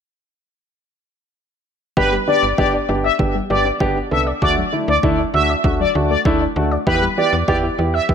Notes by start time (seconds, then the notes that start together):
1.97 G1 D3 B3 D4 G4 B4, kick
2.12 G3
2.27 D3 B3 D4 G4 D5
2.43 G1 B3
2.58 G1 D3 B3 D4 G4 D5, kick
2.73 D4
2.89 G1 D3 B3 D4 G4
3.04 D5 E5
3.19 G1 D3 B3 D4 G4, kick
3.35 G3
3.50 G1 D3 B3 D4 G4 D5
3.65 B3
3.80 G1 D3 B3 D4 G4, kick
3.96 D4
4.11 C2 D3 B3 D4 A4 E5
4.27 D5
4.42 D2 D3 A3 D4 F#4 D5, kick
4.57 F#3
4.72 D3 A3 D4 E4
4.88 D2 A3 D5
5.03 D2 D3 A3 D4 E4, kick
5.19 D4
5.34 D2 D3 A3 D4 F#4 E5
5.49 D5
5.64 D2 D3 A3 D4 F#4, kick
5.80 F#3 D5
5.95 D2 D3 A3 D4 F#4
6.10 A3 D5
6.25 D2 D3 A3 D4 E4, kick
6.41 D4
6.56 D2 D3 A3 D4 F#4
6.71 D5
6.87 E2 E3 B3 E4 G4 B4, kick
7.02 G3
7.17 E3 B3 E4 G4 D5
7.33 E2 B3
7.48 E2 E3 B3 E4 G4 D5, kick
7.63 E4
7.79 E2 E3 B3 E4 G4
7.94 E5
8.09 E2 E3 B3 E4 G4, kick